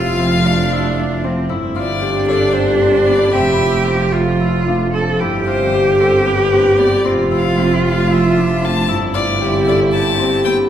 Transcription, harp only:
0, 0, Header, 1, 2, 480
1, 0, Start_track
1, 0, Tempo, 526316
1, 1372, Time_signature, 7, 3, 24, 8
1, 9752, End_track
2, 0, Start_track
2, 0, Title_t, "Harp"
2, 0, Program_c, 0, 46
2, 0, Note_on_c, 0, 60, 81
2, 0, Note_on_c, 0, 64, 65
2, 0, Note_on_c, 0, 67, 67
2, 0, Note_on_c, 0, 69, 66
2, 169, Note_off_c, 0, 60, 0
2, 173, Note_on_c, 0, 60, 67
2, 417, Note_on_c, 0, 65, 68
2, 472, Note_off_c, 0, 64, 0
2, 656, Note_on_c, 0, 64, 75
2, 710, Note_off_c, 0, 65, 0
2, 728, Note_off_c, 0, 69, 0
2, 895, Note_on_c, 0, 62, 70
2, 1121, Note_off_c, 0, 67, 0
2, 1125, Note_off_c, 0, 60, 0
2, 1129, Note_on_c, 0, 60, 65
2, 1358, Note_off_c, 0, 64, 0
2, 1361, Note_on_c, 0, 64, 82
2, 1602, Note_on_c, 0, 65, 74
2, 1657, Note_off_c, 0, 64, 0
2, 1840, Note_on_c, 0, 67, 71
2, 2084, Note_on_c, 0, 69, 71
2, 2317, Note_off_c, 0, 67, 0
2, 2320, Note_on_c, 0, 67, 72
2, 2562, Note_off_c, 0, 60, 0
2, 2565, Note_on_c, 0, 60, 69
2, 2806, Note_on_c, 0, 59, 69
2, 2861, Note_off_c, 0, 60, 0
2, 3048, Note_on_c, 0, 60, 90
2, 3103, Note_off_c, 0, 59, 0
2, 3288, Note_on_c, 0, 64, 70
2, 3342, Note_off_c, 0, 65, 0
2, 3447, Note_off_c, 0, 62, 0
2, 3525, Note_off_c, 0, 60, 0
2, 3528, Note_on_c, 0, 60, 74
2, 3767, Note_on_c, 0, 65, 66
2, 3822, Note_off_c, 0, 64, 0
2, 4013, Note_on_c, 0, 64, 72
2, 4068, Note_off_c, 0, 65, 0
2, 4087, Note_off_c, 0, 69, 0
2, 4257, Note_on_c, 0, 62, 69
2, 4467, Note_off_c, 0, 67, 0
2, 4496, Note_off_c, 0, 60, 0
2, 4499, Note_on_c, 0, 60, 62
2, 4745, Note_off_c, 0, 64, 0
2, 4748, Note_on_c, 0, 64, 82
2, 4988, Note_on_c, 0, 65, 64
2, 5042, Note_off_c, 0, 64, 0
2, 5235, Note_on_c, 0, 67, 66
2, 5470, Note_on_c, 0, 69, 71
2, 5708, Note_off_c, 0, 67, 0
2, 5712, Note_on_c, 0, 67, 78
2, 5948, Note_off_c, 0, 60, 0
2, 5952, Note_on_c, 0, 60, 68
2, 6192, Note_on_c, 0, 59, 67
2, 6246, Note_off_c, 0, 60, 0
2, 6429, Note_on_c, 0, 60, 85
2, 6483, Note_off_c, 0, 59, 0
2, 6667, Note_on_c, 0, 64, 71
2, 6721, Note_off_c, 0, 65, 0
2, 6810, Note_off_c, 0, 62, 0
2, 6907, Note_off_c, 0, 60, 0
2, 6911, Note_on_c, 0, 60, 75
2, 7151, Note_on_c, 0, 65, 69
2, 7206, Note_off_c, 0, 64, 0
2, 7389, Note_on_c, 0, 64, 80
2, 7444, Note_off_c, 0, 65, 0
2, 7473, Note_off_c, 0, 69, 0
2, 7627, Note_on_c, 0, 62, 73
2, 7857, Note_off_c, 0, 60, 0
2, 7859, Note_off_c, 0, 67, 0
2, 7860, Note_on_c, 0, 60, 69
2, 8095, Note_off_c, 0, 64, 0
2, 8099, Note_on_c, 0, 64, 93
2, 8335, Note_on_c, 0, 65, 70
2, 8390, Note_off_c, 0, 64, 0
2, 8581, Note_on_c, 0, 67, 76
2, 8820, Note_on_c, 0, 69, 77
2, 9058, Note_off_c, 0, 67, 0
2, 9061, Note_on_c, 0, 67, 77
2, 9292, Note_off_c, 0, 60, 0
2, 9295, Note_on_c, 0, 60, 70
2, 9537, Note_on_c, 0, 59, 70
2, 9592, Note_off_c, 0, 60, 0
2, 9752, Note_off_c, 0, 59, 0
2, 9752, Note_off_c, 0, 62, 0
2, 9752, Note_off_c, 0, 65, 0
2, 9752, Note_off_c, 0, 67, 0
2, 9752, Note_off_c, 0, 69, 0
2, 9752, End_track
0, 0, End_of_file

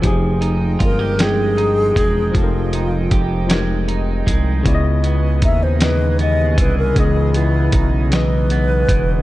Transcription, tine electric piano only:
0, 0, Header, 1, 2, 480
1, 0, Start_track
1, 0, Tempo, 769231
1, 25, Time_signature, 6, 3, 24, 8
1, 5753, End_track
2, 0, Start_track
2, 0, Title_t, "Tine electric piano"
2, 0, Program_c, 0, 4
2, 0, Control_c, 0, 64, 127
2, 10, Note_on_c, 0, 53, 90
2, 23, Note_on_c, 0, 63, 81
2, 32, Note_on_c, 0, 67, 79
2, 34, Control_c, 0, 64, 0
2, 45, Note_on_c, 0, 68, 99
2, 144, Control_c, 0, 64, 127
2, 682, Note_off_c, 0, 53, 0
2, 689, Note_off_c, 0, 63, 0
2, 693, Note_off_c, 0, 67, 0
2, 699, Note_off_c, 0, 68, 0
2, 731, Note_on_c, 0, 53, 58
2, 740, Note_on_c, 0, 63, 52
2, 751, Note_on_c, 0, 79, 58
2, 762, Note_on_c, 0, 70, 67
2, 1402, Note_off_c, 0, 53, 0
2, 1407, Note_off_c, 0, 63, 0
2, 1413, Note_off_c, 0, 79, 0
2, 1418, Note_off_c, 0, 70, 0
2, 1445, Note_on_c, 0, 53, 77
2, 1459, Note_on_c, 0, 63, 65
2, 1470, Note_on_c, 0, 67, 62
2, 1478, Note_on_c, 0, 69, 66
2, 1512, Note_off_c, 0, 69, 0
2, 1519, Note_on_c, 0, 70, 82
2, 2119, Note_off_c, 0, 53, 0
2, 2126, Note_off_c, 0, 63, 0
2, 2132, Note_off_c, 0, 67, 0
2, 2156, Note_off_c, 0, 70, 0
2, 2166, Note_on_c, 0, 53, 70
2, 2176, Note_on_c, 0, 63, 71
2, 2185, Note_on_c, 0, 67, 70
2, 2197, Note_on_c, 0, 70, 84
2, 2840, Note_off_c, 0, 53, 0
2, 2845, Note_off_c, 0, 63, 0
2, 2850, Note_off_c, 0, 67, 0
2, 2856, Note_off_c, 0, 70, 0
2, 2889, Note_on_c, 0, 49, 91
2, 2901, Note_on_c, 0, 59, 85
2, 2912, Note_on_c, 0, 64, 83
2, 2914, Control_c, 0, 64, 0
2, 2922, Note_on_c, 0, 74, 83
2, 2954, Note_off_c, 0, 74, 0
2, 2962, Note_on_c, 0, 75, 103
2, 3018, Control_c, 0, 64, 127
2, 3561, Note_off_c, 0, 49, 0
2, 3568, Note_off_c, 0, 59, 0
2, 3573, Note_off_c, 0, 64, 0
2, 3598, Note_off_c, 0, 75, 0
2, 3607, Note_on_c, 0, 49, 68
2, 3618, Note_on_c, 0, 59, 57
2, 3627, Note_on_c, 0, 63, 56
2, 3639, Note_on_c, 0, 75, 73
2, 4281, Note_off_c, 0, 49, 0
2, 4286, Note_off_c, 0, 59, 0
2, 4291, Note_off_c, 0, 63, 0
2, 4297, Note_off_c, 0, 75, 0
2, 4337, Note_on_c, 0, 49, 82
2, 4348, Note_on_c, 0, 59, 75
2, 4359, Note_on_c, 0, 63, 53
2, 4366, Note_on_c, 0, 75, 83
2, 4393, Note_off_c, 0, 63, 0
2, 4399, Note_on_c, 0, 52, 81
2, 5005, Note_off_c, 0, 49, 0
2, 5011, Note_off_c, 0, 59, 0
2, 5020, Note_off_c, 0, 75, 0
2, 5036, Note_off_c, 0, 52, 0
2, 5053, Note_on_c, 0, 49, 63
2, 5064, Note_on_c, 0, 59, 61
2, 5073, Note_on_c, 0, 52, 56
2, 5086, Note_on_c, 0, 75, 72
2, 5723, Note_off_c, 0, 49, 0
2, 5729, Note_off_c, 0, 59, 0
2, 5734, Note_off_c, 0, 52, 0
2, 5740, Note_off_c, 0, 75, 0
2, 5753, End_track
0, 0, End_of_file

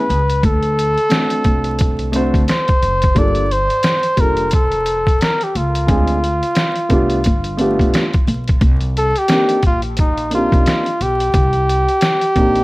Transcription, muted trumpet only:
0, 0, Header, 1, 2, 480
1, 0, Start_track
1, 0, Tempo, 681818
1, 306, Time_signature, 4, 2, 24, 8
1, 8897, End_track
2, 0, Start_track
2, 0, Title_t, "Muted trumpet"
2, 0, Program_c, 0, 59
2, 0, Note_on_c, 0, 71, 94
2, 311, Note_off_c, 0, 71, 0
2, 316, Note_on_c, 0, 69, 112
2, 1542, Note_off_c, 0, 69, 0
2, 1759, Note_on_c, 0, 72, 104
2, 2240, Note_on_c, 0, 74, 103
2, 2251, Note_off_c, 0, 72, 0
2, 2478, Note_on_c, 0, 72, 111
2, 2488, Note_off_c, 0, 74, 0
2, 2960, Note_on_c, 0, 70, 96
2, 2971, Note_off_c, 0, 72, 0
2, 3193, Note_off_c, 0, 70, 0
2, 3200, Note_on_c, 0, 69, 99
2, 3679, Note_on_c, 0, 70, 91
2, 3689, Note_off_c, 0, 69, 0
2, 3826, Note_on_c, 0, 67, 79
2, 3836, Note_off_c, 0, 70, 0
2, 3920, Note_on_c, 0, 65, 91
2, 3930, Note_off_c, 0, 67, 0
2, 5832, Note_off_c, 0, 65, 0
2, 6320, Note_on_c, 0, 69, 115
2, 6464, Note_on_c, 0, 67, 109
2, 6474, Note_off_c, 0, 69, 0
2, 6793, Note_off_c, 0, 67, 0
2, 6804, Note_on_c, 0, 65, 91
2, 6908, Note_off_c, 0, 65, 0
2, 7040, Note_on_c, 0, 63, 90
2, 7257, Note_off_c, 0, 63, 0
2, 7281, Note_on_c, 0, 65, 95
2, 7759, Note_on_c, 0, 67, 107
2, 7769, Note_off_c, 0, 65, 0
2, 8897, Note_off_c, 0, 67, 0
2, 8897, End_track
0, 0, End_of_file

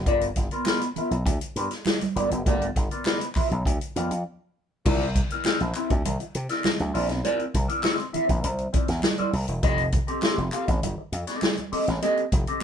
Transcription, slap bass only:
0, 0, Header, 1, 3, 480
1, 0, Start_track
1, 0, Tempo, 597610
1, 50, Time_signature, 4, 2, 24, 8
1, 10147, End_track
2, 0, Start_track
2, 0, Title_t, "Slap bass"
2, 0, Program_c, 0, 36
2, 52, Note_on_c, 0, 31, 107
2, 235, Note_off_c, 0, 31, 0
2, 291, Note_on_c, 0, 31, 80
2, 383, Note_off_c, 0, 31, 0
2, 891, Note_on_c, 0, 35, 83
2, 984, Note_off_c, 0, 35, 0
2, 1008, Note_on_c, 0, 38, 96
2, 1102, Note_off_c, 0, 38, 0
2, 1251, Note_on_c, 0, 43, 91
2, 1344, Note_off_c, 0, 43, 0
2, 1733, Note_on_c, 0, 31, 83
2, 1826, Note_off_c, 0, 31, 0
2, 1856, Note_on_c, 0, 30, 85
2, 1948, Note_off_c, 0, 30, 0
2, 1978, Note_on_c, 0, 31, 108
2, 2161, Note_off_c, 0, 31, 0
2, 2218, Note_on_c, 0, 31, 88
2, 2310, Note_off_c, 0, 31, 0
2, 2821, Note_on_c, 0, 35, 97
2, 2912, Note_off_c, 0, 35, 0
2, 2938, Note_on_c, 0, 38, 87
2, 3030, Note_off_c, 0, 38, 0
2, 3179, Note_on_c, 0, 41, 96
2, 3271, Note_off_c, 0, 41, 0
2, 3301, Note_on_c, 0, 41, 91
2, 3392, Note_off_c, 0, 41, 0
2, 3903, Note_on_c, 0, 36, 113
2, 4177, Note_off_c, 0, 36, 0
2, 4502, Note_on_c, 0, 34, 80
2, 4593, Note_off_c, 0, 34, 0
2, 4745, Note_on_c, 0, 38, 91
2, 4835, Note_off_c, 0, 38, 0
2, 4861, Note_on_c, 0, 36, 103
2, 4952, Note_off_c, 0, 36, 0
2, 5101, Note_on_c, 0, 48, 88
2, 5192, Note_off_c, 0, 48, 0
2, 5462, Note_on_c, 0, 38, 92
2, 5552, Note_off_c, 0, 38, 0
2, 5579, Note_on_c, 0, 34, 99
2, 5695, Note_off_c, 0, 34, 0
2, 5695, Note_on_c, 0, 35, 85
2, 5788, Note_off_c, 0, 35, 0
2, 6061, Note_on_c, 0, 36, 93
2, 6152, Note_off_c, 0, 36, 0
2, 6661, Note_on_c, 0, 34, 93
2, 6752, Note_off_c, 0, 34, 0
2, 6776, Note_on_c, 0, 36, 100
2, 6960, Note_off_c, 0, 36, 0
2, 7135, Note_on_c, 0, 40, 104
2, 7227, Note_off_c, 0, 40, 0
2, 7494, Note_on_c, 0, 36, 95
2, 7587, Note_off_c, 0, 36, 0
2, 7616, Note_on_c, 0, 28, 82
2, 7708, Note_off_c, 0, 28, 0
2, 7736, Note_on_c, 0, 29, 114
2, 8010, Note_off_c, 0, 29, 0
2, 8334, Note_on_c, 0, 29, 84
2, 8426, Note_off_c, 0, 29, 0
2, 8580, Note_on_c, 0, 33, 90
2, 8670, Note_off_c, 0, 33, 0
2, 8696, Note_on_c, 0, 31, 95
2, 8787, Note_off_c, 0, 31, 0
2, 8935, Note_on_c, 0, 41, 99
2, 9026, Note_off_c, 0, 41, 0
2, 9540, Note_on_c, 0, 33, 96
2, 9629, Note_off_c, 0, 33, 0
2, 9898, Note_on_c, 0, 29, 101
2, 9988, Note_off_c, 0, 29, 0
2, 10147, End_track
3, 0, Start_track
3, 0, Title_t, "Muted slap bass strokes"
3, 772, Note_on_c, 9, 29, 44
3, 852, Note_off_c, 9, 29, 0
3, 2700, Note_on_c, 9, 29, 47
3, 2781, Note_off_c, 9, 29, 0
3, 6541, Note_on_c, 9, 29, 48
3, 6622, Note_off_c, 9, 29, 0
3, 9418, Note_on_c, 9, 29, 55
3, 9498, Note_off_c, 9, 29, 0
3, 10147, End_track
0, 0, End_of_file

